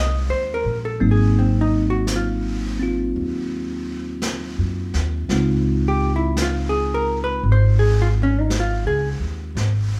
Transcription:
0.00 0.26 C2 medium
0.00 1.00 G#3 soft
0.00 0.99 C4 soft
0.00 1.00 D#4 soft
0.00 1.02 G4 soft
0.00 0.30 D#5 medium
0.29 0.63 D#2 soft
0.29 0.65 C5 medium
0.54 0.77 A#4 medium
0.64 0.98 A#1 medium
0.85 1.02 A4 medium
1.00 3.12 G#1 medium
1.00 5.30 F#3 soft
1.00 5.29 A#3 soft
1.00 2.78 C4 soft
1.00 5.30 D#4 soft
1.00 brush sweep soft
1.11 1.41 G#4 medium
1.39 1.73 C4 soft
1.61 1.84 D#4 medium
1.90 2.08 F#4 medium
2.07 brush sweep soft
2.07 snare soft
2.07 hi-hat pedal soft
2.16 3.16 F4 medium
2.80 5.30 C4 soft
2.80 5.30 F4 soft
3.14 4.55 D#2 medium
3.14 brush sweep soft
4.22 brush sweep soft
4.22 snare soft
4.22 hi-hat pedal soft
4.58 4.92 F#2 medium
4.94 5.28 D#2 medium
4.94 snare soft
5.29 7.39 C#2 medium
5.29 9.58 G#3 soft
5.29 9.59 C4 soft
5.29 9.58 D#4 soft
5.29 9.59 F4 soft
5.29 brush sweep soft
5.29 snare soft
5.88 6.12 G4 medium
6.16 6.35 E4 medium
6.37 brush sweep soft
6.37 snare soft
6.37 hi-hat pedal medium
6.42 6.74 F4 medium
6.69 7.05 G#4 medium
6.94 7.18 A#4 medium
7.24 7.42 B4 medium
7.43 8.82 G#1 medium
7.43 brush sweep soft
7.52 7.83 C5 medium
7.79 8.14 G#4 medium
8.02 8.08 F4 medium
8.23 8.41 C#4 medium
8.41 8.51 D#4 medium
8.50 brush sweep soft
8.50 snare soft
8.50 hi-hat pedal soft
8.60 8.87 F4 medium
8.85 9.19 C#2 soft
8.85 9.08 G#4 medium
9.20 9.54 D#2 medium
9.55 10.00 G#1 medium
9.55 brush sweep soft
9.55 snare soft

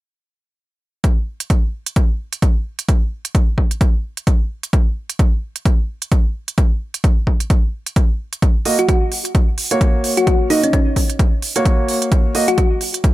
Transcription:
1.04 kick loud
1.04 closed hi-hat soft
1.40 closed hi-hat medium
1.50 kick loud
1.50 closed hi-hat soft
1.86 closed hi-hat medium
1.96 kick loud
1.96 closed hi-hat soft
2.33 closed hi-hat medium
2.42 kick loud
2.42 closed hi-hat soft
2.79 closed hi-hat medium
2.88 kick loud
2.88 closed hi-hat soft
3.25 closed hi-hat medium
3.35 kick loud
3.35 closed hi-hat soft
3.58 kick medium
3.71 closed hi-hat medium
3.81 kick loud
3.81 closed hi-hat soft
4.17 closed hi-hat medium
4.27 kick loud
4.27 closed hi-hat soft
4.63 closed hi-hat medium
4.73 kick loud
4.73 closed hi-hat soft
5.10 closed hi-hat medium
5.19 kick loud
5.19 closed hi-hat soft
5.56 closed hi-hat medium
5.65 kick loud
5.65 closed hi-hat soft
6.02 closed hi-hat medium
6.12 kick loud
6.12 closed hi-hat soft
6.48 closed hi-hat medium
6.58 kick loud
6.58 closed hi-hat soft
6.94 closed hi-hat medium
7.04 kick loud
7.04 closed hi-hat soft
7.27 kick medium
7.40 closed hi-hat medium
7.50 kick loud
7.50 closed hi-hat soft
7.86 closed hi-hat medium
7.96 kick loud
7.96 closed hi-hat soft
8.33 closed hi-hat medium
8.42 kick loud
8.42 closed hi-hat soft
8.65 8.76 A#3 medium
8.65 8.76 F#4 medium
8.65 8.76 D#5 medium
8.65 open hi-hat loud
8.79 8.85 F#4 medium
8.79 closed hi-hat medium
8.89 8.97 F#4 medium
8.89 kick loud
8.89 closed hi-hat soft
9.12 open hi-hat medium
9.25 closed hi-hat medium
9.35 kick loud
9.35 closed hi-hat soft
9.58 open hi-hat medium
9.71 10.48 A#3 medium
9.71 10.48 F#4 medium
9.71 10.48 C#5 medium
9.71 closed hi-hat medium
9.81 kick loud
9.81 closed hi-hat soft
10.04 open hi-hat medium
10.17 10.24 F#4 medium
10.17 closed hi-hat medium
10.27 10.36 F#4 medium
10.27 kick loud
10.27 closed hi-hat soft
10.50 10.60 A#3 medium
10.50 10.61 D#4 medium
10.50 10.60 F#4 medium
10.50 10.60 D#5 medium
10.50 open hi-hat loud
10.63 10.70 C#4 medium
10.63 closed hi-hat medium
10.73 10.82 C#4 medium
10.73 kick loud
10.73 closed hi-hat soft
10.96 kick medium
10.96 open hi-hat medium
11.10 closed hi-hat medium
11.19 kick loud
11.19 closed hi-hat soft
11.42 open hi-hat medium
11.56 12.32 A#3 medium
11.56 12.32 F#4 medium
11.56 12.32 C#5 medium
11.56 closed hi-hat medium
11.65 kick loud
11.65 closed hi-hat soft
11.88 open hi-hat medium
12.02 closed hi-hat medium
12.12 kick loud
12.12 closed hi-hat medium
12.35 12.45 A#3 medium
12.35 12.45 F#4 medium
12.35 12.45 D#5 medium
12.35 open hi-hat medium
12.48 12.54 F#4 medium
12.48 closed hi-hat medium
12.58 12.66 F#4 medium
12.58 kick loud
12.58 closed hi-hat soft
12.81 open hi-hat medium
12.94 closed hi-hat medium
13.04 kick loud
13.04 closed hi-hat soft

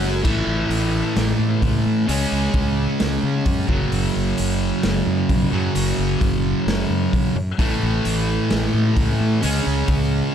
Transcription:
0.00 0.22 F#1 loud
0.00 0.24 F#2 medium
0.00 0.24 F#3 loud
0.00 snare soft
0.22 0.41 A1 medium
0.22 2.06 A2 medium
0.22 2.07 E3 medium
0.22 2.08 A3 medium
0.22 kick loud
0.22 crash medium
0.47 0.63 A1 medium
0.69 1.02 A1 medium
0.69 open hi-hat soft
1.16 1.32 A1 medium
1.16 snare medium
1.16 open hi-hat soft
1.39 1.55 A2 medium
1.62 1.78 C#2 medium
1.62 kick medium
1.62 open hi-hat soft
1.86 2.02 A2 medium
2.07 2.25 C#2 medium
2.07 3.67 C#3 medium
2.07 3.68 G#3 medium
2.07 5.60 C#4 medium
2.07 open hi-hat soft
2.32 2.48 C#2 medium
2.54 2.86 C#2 medium
2.54 kick medium
2.54 open hi-hat soft
3.00 3.17 C#2 medium
3.00 snare medium
3.00 open hi-hat soft
3.23 3.39 C#3 medium
3.46 3.62 F#2 medium
3.46 kick medium
3.46 open hi-hat soft
3.67 3.85 F#1 medium
3.67 5.49 F#2 medium
3.67 5.52 C#3 medium
3.67 5.52 F#3 loud
3.67 kick medium
3.91 4.08 F#1 medium
3.91 open hi-hat soft
4.16 4.32 F#1 medium
4.37 4.71 F#1 medium
4.37 open hi-hat soft
4.83 5.00 F#1 medium
4.83 snare loud
4.83 open hi-hat soft
5.07 5.23 F#2 medium
5.29 5.46 B1 medium
5.29 kick medium
5.29 open hi-hat soft
5.50 7.34 F#2 medium
5.50 5.69 F#2 medium
5.50 7.35 C#3 medium
5.50 7.36 F#3 loud
5.75 5.91 F#1 medium
5.75 open hi-hat medium
5.99 6.15 F#1 medium
6.21 6.53 F#1 medium
6.21 kick medium
6.21 open hi-hat soft
6.67 6.83 F#1 medium
6.67 snare medium
6.67 open hi-hat soft
6.90 7.06 F#2 medium
7.13 7.29 B1 medium
7.13 kick medium
7.13 open hi-hat soft
7.35 7.51 F#2 medium
7.58 7.75 A1 medium
7.58 9.41 A2 medium
7.58 9.42 E3 medium
7.58 9.43 A3 medium
7.58 kick loud
7.58 open hi-hat soft
7.83 7.99 A1 medium
8.05 8.37 A1 medium
8.05 open hi-hat soft
8.50 8.67 A1 medium
8.50 snare medium
8.50 open hi-hat soft
8.74 8.90 A2 medium
8.97 9.13 C#2 medium
8.97 kick medium
8.97 open hi-hat medium
9.21 9.36 A2 medium
9.42 9.59 C#2 medium
9.42 10.35 C#3 medium
9.42 10.35 G#3 medium
9.42 10.35 C#4 medium
9.42 open hi-hat medium
9.66 9.82 C#2 medium
9.88 10.20 C#2 medium
9.88 kick medium
9.88 open hi-hat soft

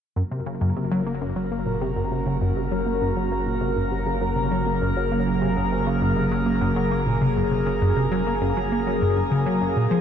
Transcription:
0.16 9.73 F#1 medium
0.16 0.23 F#2 medium
0.16 9.72 C#3 medium
0.16 9.72 F#3 medium
0.16 9.72 A#3 medium
0.16 4.92 F#4 medium
0.16 9.72 A#4 medium
0.31 0.42 C3 medium
0.46 0.57 C#3 medium
0.61 0.72 F#2 loud
0.76 0.87 C3 medium
0.92 1.02 F#3 loud
1.07 1.13 A#3 medium
1.21 1.32 F#2 medium
1.36 1.50 F#3 medium
1.52 1.62 A#3 medium
1.66 1.77 A#2 medium
1.81 1.92 C3 loud
1.96 2.03 F#2 loud
2.12 2.22 C3 medium
2.26 2.37 C#3 loud
2.41 2.52 F#2 loud
2.57 2.67 C3 medium
2.72 2.82 F#3 loud
2.87 2.93 A#3 medium
3.02 3.12 F#2 medium
3.17 3.31 F#3 medium
3.32 3.42 A#3 medium
3.46 3.57 A#2 medium
3.61 3.72 C3 medium
3.77 3.83 F#2 medium
3.92 4.02 C3 medium
4.06 4.17 C#3 loud
4.21 4.32 F#2 loud
4.36 4.47 C3 medium
4.51 4.62 F#3 loud
4.67 4.73 A#3 medium
4.82 4.92 F#2 medium
4.96 5.11 F#3 medium
4.96 10.01 G#4 medium
5.12 5.22 A#3 medium
5.27 5.37 A#2 medium
5.42 5.52 C3 loud
5.57 5.63 F#2 medium
5.72 5.82 C3 medium
5.87 5.97 C#3 loud
6.02 6.12 F#2 medium
6.17 6.27 C3 medium
6.32 6.42 F#3 loud
6.46 6.53 A#3 medium
6.61 6.72 F#2 loud
6.76 6.90 F#3 medium
6.91 7.02 A#3 medium
7.07 7.17 A#2 medium
7.22 7.32 C3 medium
7.37 7.43 F#2 medium
7.51 7.62 C3 medium
7.66 7.77 C#3 medium
7.82 7.92 F#2 medium
7.97 8.07 C3 medium
8.12 8.22 F#3 loud
8.27 8.33 A#3 medium
8.42 8.52 F#2 loud
8.57 8.71 F#3 medium
8.72 8.82 A#3 medium
8.87 9.01 F#3 medium
9.02 9.15 F#2 medium
9.17 9.23 F#2 medium
9.31 9.46 C#3 loud
9.46 9.60 F#3 medium
9.62 9.76 F#2 medium
9.76 10.01 F1 medium
9.76 9.87 A#2 medium
9.76 10.01 C3 medium
9.76 10.01 F3 medium
9.76 10.01 G#3 medium
9.76 10.01 F4 medium
9.91 10.01 F3 medium

